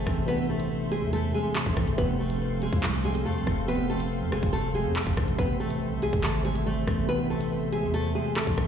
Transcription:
Already playing: tine electric piano C3 E3 A3 C4, nylon-string guitar A3 A4, analog synth pad A4 C5 E5 C6, impact
0.04 808-style bass A1, tine electric piano C3 E3 A3, kick, cross-stick, closed hi-hat
0.09 tine electric piano C4
0.25 tine electric piano C3 E3 A3, nylon-string guitar B3 B4, closed hi-hat
0.30 tine electric piano D4
0.49 nylon-string guitar A3 A4
0.60 closed hi-hat
0.92 nylon-string guitar G#3 G#4, closed hi-hat
1.02 808-style bass E2
1.13 nylon-string guitar A3 A4, closed hi-hat
1.32 tine electric piano C3 E3 A3, nylon-string guitar G#3 G#4
1.37 tine electric piano C4
1.55 nylon-string guitar A3 A4, clap, closed hi-hat
1.66 808-style bass A1, kick, closed hi-hat
1.74 808-style bass A1, tine electric piano C3 E3 A3, kick, cross-stick, open hi-hat
1.79 tine electric piano C4
1.88 closed hi-hat
1.96 808-style bass F1, tine electric piano C3 F3 A3, nylon-string guitar B3 B4, analog synth pad C5 F5, kick, closed hi-hat
2.01 tine electric piano C4
2.19 nylon-string guitar A3 A4
2.28 tine electric piano C3 F3 A3, closed hi-hat
2.33 tine electric piano D4
2.62 nylon-string guitar G#3 G#4, closed hi-hat
2.73 808-style bass C2, kick
2.83 nylon-string guitar A3 A4, clap, closed hi-hat
3.03 tine electric piano C3 F3 A3, nylon-string guitar G#3 G#4, closed hi-hat
3.08 tine electric piano C4
3.15 closed hi-hat
3.26 808-style bass F2, nylon-string guitar A3 A4
3.36 808-style bass C2
3.44 808-style bass F1, tine electric piano C3 F3 A3, kick, cross-stick, closed hi-hat
3.49 tine electric piano C4
3.66 tine electric piano C3 F3 A3, nylon-string guitar B3 B4, closed hi-hat
3.71 tine electric piano C4
3.90 nylon-string guitar A3 A4
4.00 closed hi-hat
4.22 808-style bass F2
4.32 808-style bass F1, nylon-string guitar G#3 G#4, cross-stick, closed hi-hat
4.43 808-style bass F1, kick
4.53 nylon-string guitar A3 A4, closed hi-hat
4.72 tine electric piano C3 F3 A3, nylon-string guitar G#3 G#4
4.77 tine electric piano C4
4.85 808-style bass F2
4.96 nylon-string guitar A3 A4, clap, closed hi-hat
5.03 808-style bass F1, kick, closed hi-hat
5.10 closed hi-hat
5.14 808-style bass A1, tine electric piano C3 F3 A3, kick, cross-stick
5.19 tine electric piano D4
5.28 closed hi-hat
5.36 808-style bass A1, tine electric piano C3 E3 A3, nylon-string guitar B3 B4, analog synth pad E5, kick, closed hi-hat
5.41 tine electric piano C4
5.60 nylon-string guitar A3 A4
5.68 tine electric piano C3 E3 A3, closed hi-hat
5.73 tine electric piano C4
5.92 808-style bass C2
6.02 nylon-string guitar G#3 G#4, closed hi-hat
6.13 808-style bass G#1, kick
6.24 nylon-string guitar A3 A4, clap, closed hi-hat
6.43 tine electric piano C3 E3 A3, nylon-string guitar G#3 G#4, closed hi-hat
6.48 tine electric piano C4
6.55 closed hi-hat
6.66 nylon-string guitar A3 A4
6.85 808-style bass A1, tine electric piano C3 E3 A3, kick, cross-stick, closed hi-hat
6.90 tine electric piano B3
7.05 tine electric piano C3 E3 A3, nylon-string guitar B4, closed hi-hat
7.09 nylon-string guitar B3, tine electric piano C4
7.30 nylon-string guitar A3 A4
7.41 closed hi-hat
7.72 nylon-string guitar G#3 G#4, closed hi-hat
7.83 808-style bass E2
7.94 nylon-string guitar A3 A4, closed hi-hat
8.13 tine electric piano C3 E3 A3, nylon-string guitar G#3 G#4
8.18 tine electric piano C4
8.36 nylon-string guitar A3 A4, clap, closed hi-hat
8.47 808-style bass A1, kick, closed hi-hat
8.56 808-style bass A1, tine electric piano C3 E3 A3, kick, cross-stick, open hi-hat
8.61 tine electric piano C4

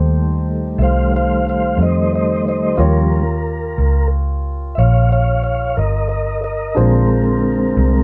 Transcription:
Already playing: fingered electric bass D#2, tonewheel organ D#3 G3 A3, grand piano D#4 G4 A4 C5
0.78 fingered electric bass C2, tonewheel organ C5 E5
0.83 tonewheel organ F5
1.16 tonewheel organ C5 F5
1.49 tonewheel organ C5 F5
1.78 fingered electric bass F2
1.82 tonewheel organ C5 D#5
2.15 tonewheel organ C5 D#5
2.48 tonewheel organ C5 D#5
2.76 fingered electric bass D#2, tonewheel organ F3 G3 C#4 A#4, grand piano F4 G4 A#4 C#5
3.78 fingered electric bass C#2
4.75 fingered electric bass A#1, tonewheel organ C#5 E5 F5
5.12 tonewheel organ C#5 F5
5.44 tonewheel organ C#5 F5
5.77 fingered electric bass G1, tonewheel organ A#4 D#5
6.09 tonewheel organ A#4 D#5
6.44 tonewheel organ A#4 D#5
6.75 fingered electric bass A#1, tonewheel organ D3 G#3, grand piano D4 F4 G#4 C5
6.79 tonewheel organ C4 A#4
7.77 fingered electric bass C2

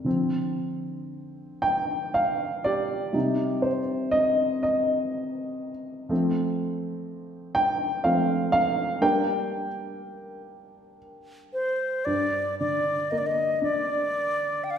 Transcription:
0.04 upright piano D3 F3 C4
1.62 upright piano G5
2.14 upright piano F5
2.64 upright piano G4 D5
3.13 upright piano C3 G3 D#4
3.62 upright piano C5
4.11 upright piano D#5
4.63 upright piano D#5
6.09 upright piano F3 A3 C4
7.55 upright piano G5
8.04 upright piano F3 A3 C4 F5
8.52 upright piano F5
9.01 upright piano G3 A#3 D4 A#4 G5
11.53 flute C5
12.05 upright piano G2, flute D5
12.59 upright piano D3, flute D5
13.11 upright piano A#3, flute D#5
13.18 flute D5
13.26 flute D#5
13.62 upright piano D4, flute D5
14.64 flute G5
14.70 flute F5

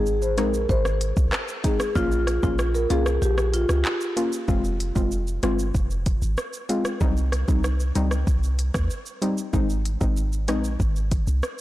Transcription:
Already playing: 808-style bass G#1
0.06 shaker
0.22 marimba C5, shaker
0.37 808-style bass A#1, synth pluck G#3 C4 D#4, marimba A#4, cross-stick, closed hi-hat, shaker
0.54 shaker
0.69 808-style bass G#1, marimba C5, kick, shaker
0.85 cross-stick, shaker
1.01 closed hi-hat, shaker
1.17 808-style bass C2, kick, shaker
1.32 cross-stick, clap, shaker
1.48 shaker
1.64 synth pluck G#3 C4 D#4, marimba G#4, kick, closed hi-hat, shaker
1.80 cross-stick, shaker
1.95 808-style bass A#1, synth pluck A#3 C#4 F4, marimba F4, kick, shaker
2.12 shaker
2.27 cross-stick, closed hi-hat, shaker
2.43 808-style bass A#1, synth pluck A#3 C#4 F4, marimba F4, kick, shaker
2.59 cross-stick, shaker
2.75 marimba A#4, shaker
2.90 808-style bass C2, synth pluck A#3 C#4 F4, marimba G#4, closed hi-hat, shaker
3.06 cross-stick, shaker
3.22 808-style bass A#1, marimba G4, shaker
3.38 cross-stick, shaker
3.54 marimba F4, closed hi-hat, shaker
3.69 808-style bass C#2, cross-stick, shaker
3.85 clap, shaker
4.01 shaker
4.17 synth pluck A#3 C#4 F4, closed hi-hat, shaker
4.33 shaker
4.48 808-style bass F1, synth pluck G#3 C4 F4, kick, shaker
4.64 shaker
4.80 closed hi-hat, shaker
4.95 808-style bass F1, synth pluck G#3 C4 F4, kick, shaker
5.11 shaker
5.27 shaker
5.43 808-style bass G1, synth pluck G#3 C4 F4, cross-stick, closed hi-hat, shaker
5.59 shaker
5.75 808-style bass F1, kick, shaker
5.91 shaker
6.06 kick, closed hi-hat, shaker
6.22 808-style bass G#1, shaker
6.38 cross-stick, shaker
6.53 shaker
6.69 synth pluck G#3 C4 F4, closed hi-hat, shaker
6.85 cross-stick, shaker
7.01 808-style bass C2, synth pluck G3 C4 D#4, kick, shaker
7.17 shaker
7.32 cross-stick, closed hi-hat, shaker
7.48 808-style bass C2, synth pluck G3 C4 D#4, kick, shaker
7.64 cross-stick, shaker
7.80 shaker
7.95 808-style bass C#2, synth pluck G3 C4 D#4, closed hi-hat, shaker
8.11 cross-stick, shaker
8.27 808-style bass C2, kick, shaker
8.43 shaker
8.59 closed hi-hat, shaker
8.74 808-style bass D#2, kick, cross-stick, shaker
8.90 shaker
9.06 shaker
9.22 synth pluck G3 C4 D#4, closed hi-hat, shaker
9.38 shaker
9.53 808-style bass G#1, synth pluck G#3 C4 D#4, kick, shaker
9.70 shaker
9.85 closed hi-hat, shaker
10.01 808-style bass G#1, synth pluck G#3 C4 D#4, kick, shaker
10.17 shaker
10.33 shaker
10.48 808-style bass A#1, synth pluck G#3 C4 D#4, cross-stick, closed hi-hat, shaker
10.64 shaker
10.80 808-style bass G#1, kick, shaker
10.96 shaker
11.12 kick, closed hi-hat, shaker
11.27 808-style bass C2, shaker
11.43 cross-stick, shaker

